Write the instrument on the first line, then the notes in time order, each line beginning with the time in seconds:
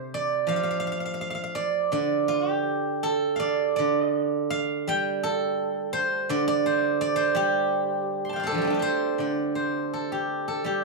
guzheng
Already playing: C3 C5 D5
0.14 D5
0.47 F3 F5
0.56 F5
0.63 F5
0.71 F5
0.80 F5
0.87 F5
0.92 F5
1.00 F5
1.06 F5
1.14 F5
1.21 F5
1.30 F5
1.35 F5
1.44 F5
1.55 D5
1.92 D3 D5
2.28 F4
2.50 G4
3.03 A4
3.36 D5 F5
3.76 D3 D5
4.50 F5
4.88 G3 G5
5.23 A4
5.93 C5
6.29 D3 D5
6.48 D5
6.66 C5
7.01 D5
7.16 C5
7.35 G3 G4
8.25 C6
8.29 G5 A5
8.36 D5 F5
8.43 A4 C5
8.52 D3 F3
8.58 G3 A3
8.64 C4 D4
8.70 F4 G4
8.79 A4 C5
9.18 D3 D5
9.55 C5
9.93 A4
10.12 G4
10.48 A4
10.64 G3 G4